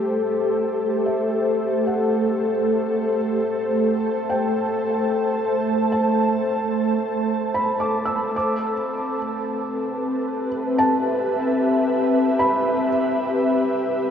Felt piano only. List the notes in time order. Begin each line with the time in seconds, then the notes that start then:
1.06 E5
1.87 F#5
4.30 G5
5.92 A5
7.54 B5
7.80 D6
8.05 E6
8.36 D6
10.78 A5
12.39 B5